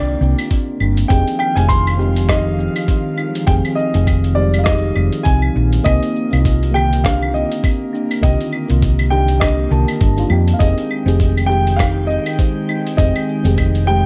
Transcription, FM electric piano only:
Already playing: D3 D#3 A#3 D4 F4 G4
1.09 C4 D#4 G4 G#4
1.56 C4 D#4 G4 G#4
1.97 C4 D#4 G4
2.02 G#3
3.47 C4 D#4 G4 G#4
3.93 C4 D#4 G4 G#4
4.34 G3 C4 D#4
4.39 G#3
5.84 A#3 C4 D#4 G4
6.31 A#3 C4 D#4 F4
6.71 D3 D#3 A#3
6.76 G4
8.21 D3 D#3 A#3 G4
8.68 D3 D#3 A#3 F4
9.10 A#3 D4 D#4 G4
9.69 D3 D#3 A#3 A5
10.17 A#3 D4 D#4 F4
10.29 A#3 D4 D#4 G4
10.59 C4 D#4 G4 G#4
11.06 C4 D#4 G4 G#4
11.46 C4 D#4 G4
11.51 G#3
12.97 C4 D#4 G4 G#4
13.44 C4 D#4 G4 G#4
13.85 C4 D#4 G4
13.90 G#3

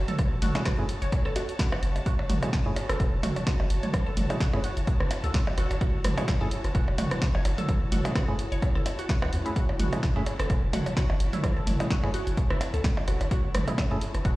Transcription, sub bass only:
0.42 F#1
0.78 F#2
1.02 F#1
1.83 F#1
2.29 F#1
2.66 F#2
2.89 F#1
3.00 E1
3.23 F#1
3.60 F#1
3.70 F#1
4.17 F#1
4.53 F#2
4.77 F#1
5.00 F#1
5.24 C#2
5.58 F#1
5.71 F#1
6.04 F#1
6.41 F#2
6.64 F#1
6.75 E1
6.98 F#1
7.35 F#1
7.45 F#1
7.92 F#1
8.28 F#2
8.52 F#1
8.75 F#1
9.22 C#2
9.33 F#2
9.79 F#1
10.16 F#2
10.39 F#1
10.50 E1
10.73 F#1
11.10 F#1
11.20 F#1
11.67 F#1
12.03 F#2
12.27 F#1
12.50 F#1
12.74 C#2
13.08 F#1
13.21 F#1
13.55 F#1
13.91 F#2
14.14 F#1
14.25 E1

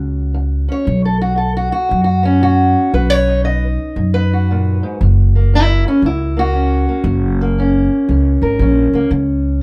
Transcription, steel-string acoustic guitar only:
Already playing: F#2 C#4 F#4
0.34 F#2
0.68 C#4 C#5
0.85 B2
1.05 A4
1.21 F#4
1.36 B2 A4
1.57 F#4
1.72 F#4
1.89 B2
2.04 F#4
2.23 B3 C#4
2.41 B2 F#4
2.94 B2 B4
3.10 C#5
3.27 D#4
3.44 B2 D#5
3.97 B2
4.14 B4
4.33 F#4
4.51 A#2
4.83 G#2
5.03 F#2
5.35 A#3
5.54 F#2 E4
5.88 C#4
6.04 F#2 E4
6.37 A#3 F#4
6.53 F#2 C#4
6.89 A#3
7.06 F#2
7.41 A#3
7.58 F#2 C#4
8.11 F#2
8.43 A#4
8.61 F#2 C#4
8.95 A#3
9.11 C#3

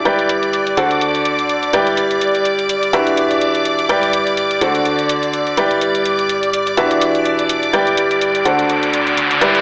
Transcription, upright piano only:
0.05 G3 E4 G4 B4 D5 G5
0.77 D3 D4 F#4 A4 C5 F#5
1.73 G3 E4 G4 B4 D5 G5
2.93 E3 D4 F#4 G4 B4 E5
3.89 G3 E4 G4 B4 D5 G5
4.61 D3 D4 F#4 A4 C5 F#5
5.57 G3 E4 G4 B4 D5 G5
6.77 E3 D4 F#4 G4 B4 E5
7.73 G3 E4 G4 B4 D5 G5
8.45 D3 D4 F#4 A4 C5 F#5
9.41 G3 E4 G4 B4 D5 G5

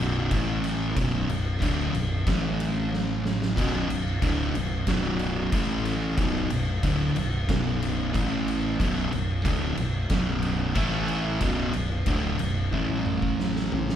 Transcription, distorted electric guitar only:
Already playing: B1 F#2 B2
0.32 A2 E3 A3
0.96 B1 F#2 B2
1.29 B1 F#2
1.60 D2 A2 D3
1.94 B1 F#2
2.26 A2 E3 A3
3.56 B1 F#2 B2
3.89 B1 F#2
4.21 D2 A2 D3
4.56 B1 F#2
4.88 B1 F#2 B2
5.52 A2 E3 A3
6.18 B1 F#2 B2
6.51 B1 F#2
6.83 D2 A2 D3
7.17 B1 F#2
7.49 B1 F#2 B2
8.13 A2 E3 A3
8.80 B1 F#2 B2
9.12 B1 F#2
9.44 D2 A2 D3
9.78 B1 F#2
10.10 B1 F#2 B2
10.75 A2 E3 A3
11.41 B1 F#2 B2
11.74 B1 F#2
12.06 D2 A2 D3
12.39 B1 F#2
12.72 A2 E3 A3

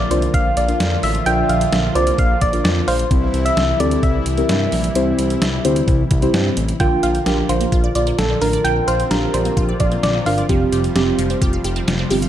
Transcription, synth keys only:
0.11 D4 F4 A#4 D5
0.68 D4 F4 A#4 D5
1.26 D4 F4 A#4 D5
1.95 D4 F4 A#4 D5
2.53 D4 F4 A#4 D5
3.11 C4 E4 G4 C5
3.80 C4 E4 G4 A4
4.38 C4 E4 G4 A#4
4.96 C4 E4 G4 C5
5.65 C4 E4 G4 C5
6.22 C4 E4 G4 C5
6.80 D4 F4 A#4
7.26 D4 F4 A#4
8.41 D4 F4 A#4
8.64 D4 F4 A#4
9.11 D4 F4 G4
10.26 D4 F4 A#4
10.49 C4 F4 G4
10.95 C4 F4 G4
12.11 C4 F4 G4

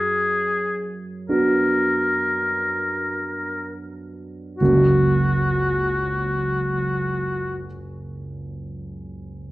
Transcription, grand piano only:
Already playing: F#2
1.29 B3 D4 F#4
4.60 F#1 C#2 F#3 A#3 C#4 F#4

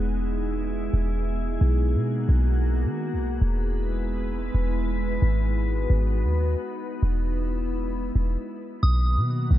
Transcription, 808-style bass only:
Already playing: E1
0.94 E1
1.61 B1
1.95 B2
2.29 B1
2.85 D#3
3.13 B1
3.42 E1
4.55 E1
5.22 G#1
5.90 G#1
6.24 D#2
7.03 E1
8.16 E1
8.83 B1
9.17 B2
9.51 B1

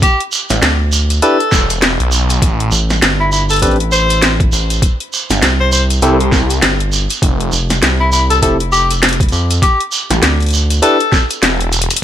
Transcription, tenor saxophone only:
0.02 G4
1.22 A4
3.20 E4
3.32 E4
3.50 A4
3.62 A4
3.92 C5
5.60 C5
5.72 C5
8.00 E4
8.12 E4
8.30 A4
8.42 A4
8.72 G4
9.62 G4
10.82 A4

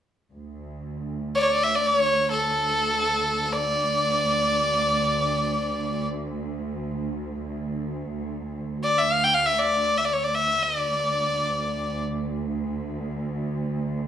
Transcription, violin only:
1.35 C#5 D5
1.42 C#5
1.50 D5
1.63 E5
1.75 D5
1.86 C#5
2.31 A4
3.53 D5
8.84 D5
8.98 E5
9.12 F5
9.24 G5
9.34 F5
9.45 E5
9.59 D5
9.97 E5
10.05 D5
10.13 C#5
10.24 D5
10.34 E5
10.63 D5

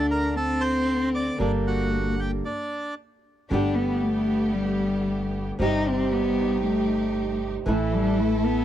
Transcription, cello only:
Already playing: D4
0.36 C4
1.38 A#3
3.51 D4
3.75 B3
4.02 A3
4.53 G3
5.61 D#4
5.89 C4
6.12 B3
6.63 A3
7.68 E3
7.94 G3
8.20 A3
8.45 B3

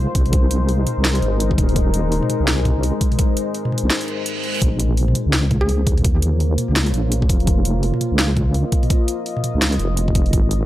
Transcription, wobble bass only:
0.15 C2
0.98 C2
1.23 G#1
1.58 D#1
2.40 C2
3.83 C2
4.62 A#1
5.26 C#2
5.87 D#2
6.69 C#2
6.94 A#1
7.29 F1
8.12 C#2
9.55 C#2
9.80 F1
10.33 G#1

